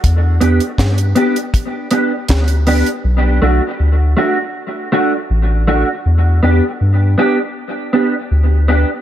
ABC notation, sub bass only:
X:1
M:4/4
L:1/16
Q:1/4=80
K:Edor
V:1 name="Sub bass" clef=bass
E,,2 E,, z G,,2 z6 D,,3 z | B,,,2 B,,, z D,,2 z6 A,,,3 z | E,,2 E,, z G,,2 z6 D,,3 z |]